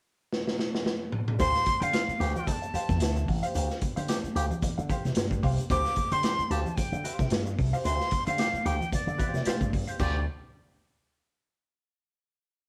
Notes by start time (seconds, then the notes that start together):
0.33 snare
0.48 snare
0.59 snare
0.75 snare
0.86 snare
1.12 mid tom
1.28 mid tom
1.39 D2 G4 C5 F5 C6, kick, closed hi-hat, muted conga, shaker
1.55 snare, shaker
1.66 muted slap bass stroke, kick, closed hi-hat, muted conga, shaker
1.80 D3 G4 C5 F5 G5, closed hi-hat, shaker
1.93 F4, snare, closed hi-hat, high conga, shaker
2.08 muted slap bass stroke, shaker
2.20 D2 G4 C5 F5, snare, closed hi-hat
2.35 G5, muted hollow-body jazz guitar stroke, low conga, shaker
2.47 A5, muted hollow-body jazz guitar stroke, kick, closed hi-hat, muted conga, shaker
2.62 muted hollow-body jazz guitar stroke, shaker
2.74 G4 C5 F5, muted slap bass stroke, closed hi-hat, muted conga, shaker
2.89 F2, muted hollow-body jazz guitar stroke, kick, snare, shaker
3.00 D2, muted hollow-body jazz guitar stroke, snare, closed hi-hat, high conga, shaker
3.16 muted hollow-body jazz guitar stroke, high conga, shaker
3.28 A1, kick, open hi-hat
3.43 G4 C5 F5, closed hi-hat, shaker
3.54 D2 G4 C5 F5, closed hi-hat, muted conga, shaker
3.70 snare, shaker
3.81 muted hollow-body jazz guitar stroke, muted slap bass stroke, kick, closed hi-hat, muted conga, shaker
3.96 D3 G4 C5 F5, closed hi-hat, shaker
4.08 G4, snare, closed hi-hat, high conga, shaker
4.24 muted slap bass stroke, shaker
4.35 D2 G4 C5 F5, closed hi-hat
4.50 muted hollow-body jazz guitar stroke, low conga, shaker
4.62 muted slap bass stroke, muted hollow-body jazz guitar stroke, kick, closed hi-hat, muted conga, low conga, shaker
4.78 D3, muted hollow-body jazz guitar stroke, shaker
4.89 G4 C5 F5, kick, closed hi-hat, muted conga, low conga, shaker
5.05 C3, muted hollow-body jazz guitar stroke, snare, shaker
5.15 G2, snare, closed hi-hat, high conga, shaker
5.31 muted hollow-body jazz guitar stroke, kick, high conga, shaker
5.43 C2 G4 C5 F5, kick, open hi-hat
5.58 muted hollow-body jazz guitar stroke, closed hi-hat, shaker
5.70 D2 G4 C5 F5 D6, kick, closed hi-hat, muted conga, shaker
5.85 snare, shaker
5.96 muted slap bass stroke, muted hollow-body jazz guitar stroke, kick, closed hi-hat, muted conga, shaker
6.12 D3 G4 C5 G5 C6, closed hi-hat, shaker
6.23 G4, muted hollow-body jazz guitar stroke, snare, closed hi-hat, high conga, shaker
6.39 muted slap bass stroke, shaker
6.50 D2 G4 C5 F5 A5, snare, closed hi-hat
6.66 muted hollow-body jazz guitar stroke, low conga, shaker
6.70 A5
6.76 G5, muted slap bass stroke, muted hollow-body jazz guitar stroke, kick, closed hi-hat, muted conga, shaker
6.92 D3, muted hollow-body jazz guitar stroke, shaker
7.04 G4 C5 F5, closed hi-hat, muted conga, shaker
7.19 C3, muted hollow-body jazz guitar stroke, kick, snare, shaker
7.30 G2, muted hollow-body jazz guitar stroke, snare, closed hi-hat, high conga, shaker
7.46 muted hollow-body jazz guitar stroke, high conga, shaker
7.59 C2, kick, open hi-hat
7.73 G4 C5 F5, shaker
7.85 D2 G4 C5 F5 C6, closed hi-hat, muted conga, shaker
8.00 snare, shaker
8.11 muted hollow-body jazz guitar stroke, muted slap bass stroke, kick, closed hi-hat, muted conga, shaker
8.26 D3 G4 C5 F5, closed hi-hat, shaker
8.38 G4, muted hollow-body jazz guitar stroke, snare, closed hi-hat, high conga, shaker
8.53 muted slap bass stroke, shaker
8.65 D2 G4 C5 F5 G5, closed hi-hat
8.81 muted hollow-body jazz guitar stroke, low conga, shaker
8.93 D5, muted hollow-body jazz guitar stroke, muted slap bass stroke, kick, closed hi-hat, muted conga, low conga, shaker
9.07 D3, muted hollow-body jazz guitar stroke, shaker
9.18 G4 C5 F5, kick, closed hi-hat, muted conga, low conga, shaker
9.34 C3, muted hollow-body jazz guitar stroke, snare, shaker
9.45 G4 C5 F5, muted slap bass stroke, snare, closed hi-hat, high conga, shaker
9.61 G2, kick, high conga, shaker
9.73 muted hollow-body jazz guitar stroke, kick, open hi-hat
9.87 G4 C5 F5, closed hi-hat, shaker
9.99 D2 G4 C5 D5 F5, kick, crash, muted conga, shaker